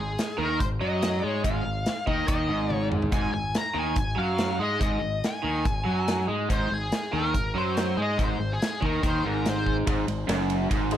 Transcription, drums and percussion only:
0.18 snare, closed hi-hat
0.60 kick, closed hi-hat
1.02 snare, closed hi-hat
1.44 kick, closed hi-hat
1.86 snare, closed hi-hat
2.07 kick
2.28 kick, closed hi-hat
2.70 high tom
2.92 mid tom
3.02 floor tom
3.12 kick, closed hi-hat
3.55 snare, closed hi-hat
3.96 kick, closed hi-hat
4.38 snare, closed hi-hat
4.81 kick, closed hi-hat
5.24 snare, closed hi-hat
5.65 kick, closed hi-hat
6.08 snare, closed hi-hat
6.50 kick, closed hi-hat
6.92 snare, closed hi-hat
7.34 kick, closed hi-hat
7.77 snare, closed hi-hat
8.19 kick, closed hi-hat
8.62 snare, closed hi-hat
8.82 kick
9.03 kick, closed hi-hat
9.46 snare, closed hi-hat
9.66 kick
9.87 kick, ride
10.08 ride
10.29 snare, ride
10.50 ride
10.71 kick, ride
10.91 ride

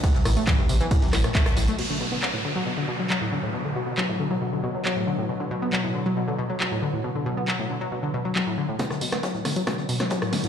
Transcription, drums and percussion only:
0.03 kick, snare, closed hi-hat, ride, tambourine
0.14 snare, tambourine
0.25 cross-stick, open hi-hat, tambourine
0.36 closed hi-hat, tambourine
0.47 kick, snare, clap, closed hi-hat, ride, tambourine
0.58 tambourine
0.69 closed hi-hat, open hi-hat, tambourine
0.80 closed hi-hat, tambourine
0.91 kick, closed hi-hat, ride, tambourine
1.02 open hi-hat, tambourine
1.13 cross-stick, clap, closed hi-hat, open hi-hat, tambourine
1.24 cross-stick, closed hi-hat, tambourine
1.35 kick, snare, clap, closed hi-hat, ride, tambourine
1.46 cross-stick, snare, closed hi-hat, tambourine
1.56 snare, closed hi-hat, open hi-hat, tambourine
1.68 closed hi-hat, tambourine
1.79 crash
2.22 clap
3.10 clap
3.98 clap
4.85 clap
5.73 clap
6.60 clap
7.48 clap
8.36 clap
8.79 kick, snare, closed hi-hat, tambourine
8.90 cross-stick, snare, tambourine
9.01 closed hi-hat, open hi-hat, tambourine
9.12 cross-stick, snare, closed hi-hat, tambourine
9.23 kick, snare, closed hi-hat, tambourine
9.34 snare, tambourine
9.45 cross-stick, snare, open hi-hat, tambourine
9.56 closed hi-hat, tambourine
9.67 kick, cross-stick, snare, closed hi-hat, tambourine
9.78 snare, tambourine
9.88 closed hi-hat, open hi-hat, tambourine
10.00 cross-stick, snare, closed hi-hat, tambourine
10.10 kick, snare, closed hi-hat, tambourine
10.21 cross-stick, snare, tambourine
10.33 snare, closed hi-hat, open hi-hat, tambourine
10.44 snare, closed hi-hat, tambourine

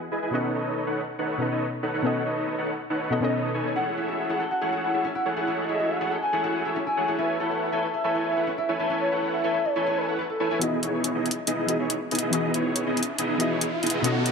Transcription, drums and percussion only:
10.61 closed hi-hat
10.83 closed hi-hat
11.04 closed hi-hat
11.26 closed hi-hat
11.31 closed hi-hat
11.47 closed hi-hat
11.69 closed hi-hat
11.90 closed hi-hat
12.11 closed hi-hat
12.15 closed hi-hat
12.19 closed hi-hat
12.33 closed hi-hat
12.54 closed hi-hat
12.76 closed hi-hat
12.97 closed hi-hat
13.03 closed hi-hat
13.18 closed hi-hat
13.40 closed hi-hat
13.61 closed hi-hat
13.83 closed hi-hat
13.87 closed hi-hat
13.90 closed hi-hat
14.04 closed hi-hat
14.26 closed hi-hat

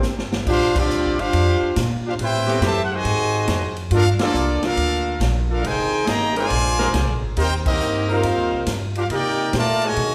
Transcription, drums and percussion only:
0.03 snare, hi-hat pedal
0.18 snare
0.32 snare
0.47 kick, crash
0.75 kick, crash
0.90 hi-hat pedal
1.19 ride
1.33 ride
1.76 snare, hi-hat pedal, ride
2.19 ride
2.33 snare
2.48 snare
2.62 snare, hi-hat pedal, ride
3.05 ride
3.48 snare, hi-hat pedal, ride
3.76 ride
3.91 ride
4.19 snare, ride
4.34 hi-hat pedal
4.63 snare, ride
4.77 ride
5.21 snare, hi-hat pedal, ride
5.64 ride
6.07 snare, hi-hat pedal, ride
6.36 ride
6.50 ride
6.79 snare
6.94 snare, hi-hat pedal, ride
7.37 ride
7.66 kick, crash
7.80 hi-hat pedal
8.23 ride
8.66 snare, hi-hat pedal, ride
8.95 ride
9.10 ride
9.53 snare, hi-hat pedal, ride
9.82 ride
9.96 ride

